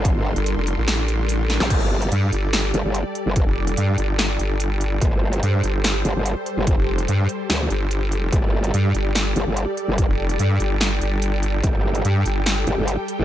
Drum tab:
CC |----------------|x---------------|----------------|----------------|
HH |x--xx-x-x-x-x-x-|x--xx-x-x-x-x-x-|x--xx-x-x-x-x-x-|x--xx-x-x-x-x-x-|
SD |--------o-----oo|--------o-------|--------o-------|--------o-------|
BD |o---------------|o---------------|o---------------|o---------------|

CC |----------------|----------------|----------------|----------------|
HH |x--xx-x-x-x-x-x-|x--xx-x-x-x-x-x-|x--xx-x-x-x-x-x-|x--xx-x-x-x-x-x-|
SD |--------o-------|--------o-------|--------o-------|--------o-------|
BD |o---------------|o---------------|o---------------|o---------------|